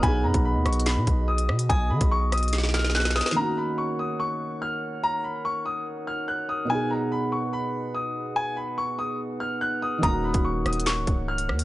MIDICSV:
0, 0, Header, 1, 7, 480
1, 0, Start_track
1, 0, Key_signature, -6, "minor"
1, 0, Tempo, 416667
1, 36, Time_signature, 4, 2, 24, 8
1, 13410, End_track
2, 0, Start_track
2, 0, Title_t, "Synth bell"
2, 0, Program_c, 0, 98
2, 32, Note_on_c, 0, 83, 107
2, 948, Note_off_c, 0, 83, 0
2, 1954, Note_on_c, 0, 87, 103
2, 2869, Note_off_c, 0, 87, 0
2, 11553, Note_on_c, 0, 87, 106
2, 12469, Note_off_c, 0, 87, 0
2, 13410, End_track
3, 0, Start_track
3, 0, Title_t, "Grand piano"
3, 0, Program_c, 1, 0
3, 36, Note_on_c, 1, 80, 108
3, 261, Note_off_c, 1, 80, 0
3, 275, Note_on_c, 1, 82, 74
3, 500, Note_off_c, 1, 82, 0
3, 517, Note_on_c, 1, 83, 86
3, 742, Note_off_c, 1, 83, 0
3, 756, Note_on_c, 1, 85, 78
3, 981, Note_off_c, 1, 85, 0
3, 996, Note_on_c, 1, 83, 93
3, 1447, Note_off_c, 1, 83, 0
3, 1473, Note_on_c, 1, 87, 83
3, 1926, Note_off_c, 1, 87, 0
3, 1951, Note_on_c, 1, 80, 111
3, 2178, Note_off_c, 1, 80, 0
3, 2190, Note_on_c, 1, 83, 83
3, 2418, Note_off_c, 1, 83, 0
3, 2436, Note_on_c, 1, 85, 96
3, 2661, Note_off_c, 1, 85, 0
3, 2674, Note_on_c, 1, 87, 95
3, 2900, Note_off_c, 1, 87, 0
3, 3156, Note_on_c, 1, 89, 85
3, 3381, Note_off_c, 1, 89, 0
3, 3398, Note_on_c, 1, 90, 87
3, 3622, Note_off_c, 1, 90, 0
3, 3635, Note_on_c, 1, 87, 86
3, 3861, Note_off_c, 1, 87, 0
3, 3876, Note_on_c, 1, 82, 115
3, 4101, Note_off_c, 1, 82, 0
3, 4118, Note_on_c, 1, 83, 79
3, 4342, Note_off_c, 1, 83, 0
3, 4354, Note_on_c, 1, 85, 82
3, 4580, Note_off_c, 1, 85, 0
3, 4599, Note_on_c, 1, 87, 85
3, 4823, Note_off_c, 1, 87, 0
3, 4834, Note_on_c, 1, 85, 91
3, 5286, Note_off_c, 1, 85, 0
3, 5319, Note_on_c, 1, 89, 91
3, 5769, Note_off_c, 1, 89, 0
3, 5800, Note_on_c, 1, 82, 113
3, 6023, Note_off_c, 1, 82, 0
3, 6035, Note_on_c, 1, 83, 77
3, 6261, Note_off_c, 1, 83, 0
3, 6277, Note_on_c, 1, 85, 92
3, 6502, Note_off_c, 1, 85, 0
3, 6515, Note_on_c, 1, 87, 86
3, 6741, Note_off_c, 1, 87, 0
3, 6996, Note_on_c, 1, 89, 85
3, 7221, Note_off_c, 1, 89, 0
3, 7234, Note_on_c, 1, 90, 81
3, 7460, Note_off_c, 1, 90, 0
3, 7476, Note_on_c, 1, 87, 83
3, 7701, Note_off_c, 1, 87, 0
3, 7715, Note_on_c, 1, 80, 109
3, 7940, Note_off_c, 1, 80, 0
3, 7954, Note_on_c, 1, 82, 75
3, 8180, Note_off_c, 1, 82, 0
3, 8198, Note_on_c, 1, 83, 87
3, 8422, Note_off_c, 1, 83, 0
3, 8434, Note_on_c, 1, 85, 78
3, 8660, Note_off_c, 1, 85, 0
3, 8675, Note_on_c, 1, 83, 94
3, 9126, Note_off_c, 1, 83, 0
3, 9153, Note_on_c, 1, 87, 89
3, 9606, Note_off_c, 1, 87, 0
3, 9631, Note_on_c, 1, 80, 109
3, 9859, Note_off_c, 1, 80, 0
3, 9870, Note_on_c, 1, 83, 83
3, 10098, Note_off_c, 1, 83, 0
3, 10113, Note_on_c, 1, 85, 95
3, 10340, Note_off_c, 1, 85, 0
3, 10353, Note_on_c, 1, 87, 92
3, 10580, Note_off_c, 1, 87, 0
3, 10832, Note_on_c, 1, 89, 88
3, 11059, Note_off_c, 1, 89, 0
3, 11074, Note_on_c, 1, 90, 91
3, 11300, Note_off_c, 1, 90, 0
3, 11317, Note_on_c, 1, 87, 88
3, 11542, Note_off_c, 1, 87, 0
3, 11556, Note_on_c, 1, 82, 115
3, 11781, Note_off_c, 1, 82, 0
3, 11796, Note_on_c, 1, 83, 79
3, 12021, Note_off_c, 1, 83, 0
3, 12033, Note_on_c, 1, 85, 81
3, 12260, Note_off_c, 1, 85, 0
3, 12279, Note_on_c, 1, 87, 83
3, 12503, Note_off_c, 1, 87, 0
3, 12515, Note_on_c, 1, 85, 91
3, 12967, Note_off_c, 1, 85, 0
3, 12998, Note_on_c, 1, 89, 91
3, 13410, Note_off_c, 1, 89, 0
3, 13410, End_track
4, 0, Start_track
4, 0, Title_t, "Glass harmonica"
4, 0, Program_c, 2, 92
4, 32, Note_on_c, 2, 75, 78
4, 33, Note_on_c, 2, 59, 70
4, 34, Note_on_c, 2, 66, 66
4, 34, Note_on_c, 2, 68, 67
4, 3836, Note_off_c, 2, 59, 0
4, 3836, Note_off_c, 2, 75, 0
4, 3837, Note_off_c, 2, 66, 0
4, 3837, Note_off_c, 2, 68, 0
4, 3876, Note_on_c, 2, 70, 65
4, 3876, Note_on_c, 2, 73, 66
4, 3877, Note_on_c, 2, 63, 72
4, 3878, Note_on_c, 2, 78, 81
4, 7678, Note_off_c, 2, 63, 0
4, 7678, Note_off_c, 2, 70, 0
4, 7678, Note_off_c, 2, 73, 0
4, 7712, Note_on_c, 2, 63, 72
4, 7713, Note_on_c, 2, 68, 69
4, 7713, Note_on_c, 2, 71, 66
4, 11516, Note_off_c, 2, 68, 0
4, 11516, Note_off_c, 2, 71, 0
4, 11555, Note_on_c, 2, 70, 64
4, 11555, Note_on_c, 2, 73, 67
4, 13410, Note_off_c, 2, 63, 0
4, 13410, Note_off_c, 2, 70, 0
4, 13410, Note_off_c, 2, 73, 0
4, 13410, Note_off_c, 2, 78, 0
4, 13410, End_track
5, 0, Start_track
5, 0, Title_t, "Felt piano"
5, 0, Program_c, 3, 0
5, 0, Control_c, 3, 64, 127
5, 0, Note_on_c, 3, 47, 69
5, 19, Note_on_c, 3, 59, 66
5, 53, Control_c, 3, 64, 0
5, 56, Note_on_c, 3, 63, 62
5, 92, Note_on_c, 3, 68, 76
5, 235, Control_c, 3, 64, 127
5, 3803, Note_off_c, 3, 47, 0
5, 3821, Note_off_c, 3, 59, 0
5, 3821, Note_on_c, 3, 51, 65
5, 3840, Note_off_c, 3, 63, 0
5, 3858, Note_off_c, 3, 68, 0
5, 3859, Note_on_c, 3, 58, 63
5, 3892, Control_c, 3, 64, 0
5, 3895, Note_on_c, 3, 61, 60
5, 3932, Note_on_c, 3, 66, 82
5, 4080, Control_c, 3, 64, 127
5, 7642, Note_off_c, 3, 51, 0
5, 7661, Note_off_c, 3, 58, 0
5, 7662, Note_on_c, 3, 47, 69
5, 7679, Note_off_c, 3, 61, 0
5, 7698, Note_off_c, 3, 66, 0
5, 7699, Note_on_c, 3, 59, 65
5, 7733, Control_c, 3, 64, 0
5, 7736, Note_on_c, 3, 63, 64
5, 7773, Note_on_c, 3, 68, 76
5, 7928, Control_c, 3, 64, 127
5, 11483, Note_off_c, 3, 47, 0
5, 11501, Note_off_c, 3, 59, 0
5, 11502, Note_on_c, 3, 51, 66
5, 11520, Note_off_c, 3, 63, 0
5, 11539, Note_off_c, 3, 68, 0
5, 11539, Note_on_c, 3, 58, 63
5, 11573, Control_c, 3, 64, 0
5, 11576, Note_on_c, 3, 61, 61
5, 11613, Note_on_c, 3, 66, 81
5, 11786, Control_c, 3, 64, 127
5, 13410, Note_off_c, 3, 51, 0
5, 13410, Note_off_c, 3, 58, 0
5, 13410, Note_off_c, 3, 61, 0
5, 13410, Note_off_c, 3, 66, 0
5, 13410, End_track
6, 0, Start_track
6, 0, Title_t, "808-style bass"
6, 0, Program_c, 4, 38
6, 35, Note_on_c, 4, 35, 110
6, 275, Note_on_c, 4, 42, 104
6, 293, Note_off_c, 4, 35, 0
6, 390, Note_off_c, 4, 42, 0
6, 395, Note_on_c, 4, 35, 109
6, 634, Note_on_c, 4, 39, 97
6, 651, Note_off_c, 4, 35, 0
6, 749, Note_off_c, 4, 39, 0
6, 754, Note_on_c, 4, 35, 102
6, 1115, Note_on_c, 4, 47, 102
6, 1133, Note_off_c, 4, 35, 0
6, 1230, Note_off_c, 4, 47, 0
6, 1236, Note_on_c, 4, 35, 109
6, 1716, Note_on_c, 4, 47, 98
6, 1733, Note_off_c, 4, 35, 0
6, 1944, Note_off_c, 4, 47, 0
6, 1956, Note_on_c, 4, 35, 109
6, 2197, Note_on_c, 4, 51, 105
6, 2214, Note_off_c, 4, 35, 0
6, 2310, Note_off_c, 4, 51, 0
6, 2316, Note_on_c, 4, 35, 102
6, 3710, Note_off_c, 4, 35, 0
6, 11557, Note_on_c, 4, 27, 114
6, 11902, Note_off_c, 4, 27, 0
6, 11917, Note_on_c, 4, 27, 102
6, 12262, Note_off_c, 4, 27, 0
6, 12277, Note_on_c, 4, 27, 105
6, 12637, Note_on_c, 4, 25, 101
6, 12654, Note_off_c, 4, 27, 0
6, 12750, Note_off_c, 4, 25, 0
6, 12758, Note_on_c, 4, 25, 106
6, 13236, Note_on_c, 4, 39, 101
6, 13253, Note_off_c, 4, 25, 0
6, 13410, Note_off_c, 4, 39, 0
6, 13410, End_track
7, 0, Start_track
7, 0, Title_t, "Drums"
7, 36, Note_on_c, 9, 36, 110
7, 36, Note_on_c, 9, 42, 82
7, 151, Note_off_c, 9, 36, 0
7, 151, Note_off_c, 9, 42, 0
7, 393, Note_on_c, 9, 42, 78
7, 395, Note_on_c, 9, 36, 103
7, 508, Note_off_c, 9, 42, 0
7, 511, Note_off_c, 9, 36, 0
7, 756, Note_on_c, 9, 37, 97
7, 756, Note_on_c, 9, 42, 46
7, 836, Note_off_c, 9, 42, 0
7, 836, Note_on_c, 9, 42, 61
7, 871, Note_off_c, 9, 37, 0
7, 916, Note_off_c, 9, 42, 0
7, 916, Note_on_c, 9, 42, 79
7, 991, Note_off_c, 9, 42, 0
7, 991, Note_on_c, 9, 42, 88
7, 996, Note_on_c, 9, 38, 124
7, 1007, Note_on_c, 9, 39, 99
7, 1106, Note_off_c, 9, 42, 0
7, 1111, Note_off_c, 9, 38, 0
7, 1122, Note_off_c, 9, 39, 0
7, 1234, Note_on_c, 9, 42, 74
7, 1236, Note_on_c, 9, 36, 91
7, 1349, Note_off_c, 9, 42, 0
7, 1351, Note_off_c, 9, 36, 0
7, 1592, Note_on_c, 9, 42, 84
7, 1708, Note_off_c, 9, 42, 0
7, 1716, Note_on_c, 9, 37, 104
7, 1831, Note_off_c, 9, 37, 0
7, 1831, Note_on_c, 9, 42, 92
7, 1946, Note_off_c, 9, 42, 0
7, 1956, Note_on_c, 9, 36, 111
7, 1956, Note_on_c, 9, 42, 82
7, 2071, Note_off_c, 9, 36, 0
7, 2071, Note_off_c, 9, 42, 0
7, 2312, Note_on_c, 9, 42, 76
7, 2316, Note_on_c, 9, 36, 104
7, 2427, Note_off_c, 9, 42, 0
7, 2431, Note_off_c, 9, 36, 0
7, 2676, Note_on_c, 9, 37, 98
7, 2676, Note_on_c, 9, 42, 80
7, 2736, Note_off_c, 9, 42, 0
7, 2736, Note_on_c, 9, 42, 68
7, 2791, Note_off_c, 9, 37, 0
7, 2795, Note_off_c, 9, 42, 0
7, 2795, Note_on_c, 9, 42, 55
7, 2856, Note_off_c, 9, 42, 0
7, 2856, Note_on_c, 9, 42, 45
7, 2911, Note_off_c, 9, 42, 0
7, 2911, Note_on_c, 9, 42, 86
7, 2915, Note_on_c, 9, 38, 67
7, 2975, Note_off_c, 9, 38, 0
7, 2975, Note_on_c, 9, 38, 61
7, 3026, Note_off_c, 9, 42, 0
7, 3035, Note_off_c, 9, 38, 0
7, 3035, Note_on_c, 9, 38, 72
7, 3096, Note_off_c, 9, 38, 0
7, 3096, Note_on_c, 9, 38, 63
7, 3155, Note_on_c, 9, 42, 76
7, 3156, Note_off_c, 9, 38, 0
7, 3156, Note_on_c, 9, 38, 80
7, 3216, Note_off_c, 9, 38, 0
7, 3216, Note_on_c, 9, 38, 67
7, 3270, Note_off_c, 9, 42, 0
7, 3277, Note_off_c, 9, 38, 0
7, 3277, Note_on_c, 9, 38, 85
7, 3336, Note_off_c, 9, 38, 0
7, 3336, Note_on_c, 9, 38, 73
7, 3396, Note_off_c, 9, 38, 0
7, 3396, Note_on_c, 9, 38, 94
7, 3456, Note_off_c, 9, 38, 0
7, 3456, Note_on_c, 9, 38, 83
7, 3516, Note_off_c, 9, 38, 0
7, 3516, Note_on_c, 9, 38, 105
7, 3516, Note_on_c, 9, 42, 65
7, 3577, Note_off_c, 9, 38, 0
7, 3577, Note_off_c, 9, 42, 0
7, 3577, Note_on_c, 9, 38, 93
7, 3577, Note_on_c, 9, 42, 65
7, 3637, Note_off_c, 9, 38, 0
7, 3637, Note_off_c, 9, 42, 0
7, 3637, Note_on_c, 9, 38, 106
7, 3637, Note_on_c, 9, 42, 67
7, 3637, Note_on_c, 9, 46, 53
7, 3696, Note_off_c, 9, 38, 0
7, 3696, Note_off_c, 9, 42, 0
7, 3696, Note_on_c, 9, 38, 94
7, 3696, Note_on_c, 9, 42, 65
7, 3752, Note_off_c, 9, 46, 0
7, 3756, Note_off_c, 9, 38, 0
7, 3756, Note_on_c, 9, 38, 115
7, 3811, Note_off_c, 9, 42, 0
7, 3816, Note_off_c, 9, 38, 0
7, 3816, Note_on_c, 9, 38, 104
7, 3931, Note_off_c, 9, 38, 0
7, 11557, Note_on_c, 9, 36, 111
7, 11557, Note_on_c, 9, 42, 82
7, 11672, Note_off_c, 9, 36, 0
7, 11673, Note_off_c, 9, 42, 0
7, 11912, Note_on_c, 9, 42, 76
7, 11917, Note_on_c, 9, 36, 102
7, 12028, Note_off_c, 9, 42, 0
7, 12032, Note_off_c, 9, 36, 0
7, 12277, Note_on_c, 9, 37, 99
7, 12277, Note_on_c, 9, 42, 48
7, 12357, Note_off_c, 9, 42, 0
7, 12357, Note_on_c, 9, 42, 64
7, 12392, Note_off_c, 9, 37, 0
7, 12437, Note_off_c, 9, 42, 0
7, 12437, Note_on_c, 9, 42, 78
7, 12513, Note_off_c, 9, 42, 0
7, 12513, Note_on_c, 9, 42, 91
7, 12518, Note_on_c, 9, 38, 124
7, 12529, Note_on_c, 9, 39, 97
7, 12628, Note_off_c, 9, 42, 0
7, 12633, Note_off_c, 9, 38, 0
7, 12644, Note_off_c, 9, 39, 0
7, 12756, Note_on_c, 9, 42, 76
7, 12758, Note_on_c, 9, 36, 94
7, 12871, Note_off_c, 9, 42, 0
7, 12873, Note_off_c, 9, 36, 0
7, 13114, Note_on_c, 9, 42, 86
7, 13229, Note_off_c, 9, 42, 0
7, 13239, Note_on_c, 9, 37, 106
7, 13353, Note_on_c, 9, 42, 93
7, 13354, Note_off_c, 9, 37, 0
7, 13410, Note_off_c, 9, 42, 0
7, 13410, End_track
0, 0, End_of_file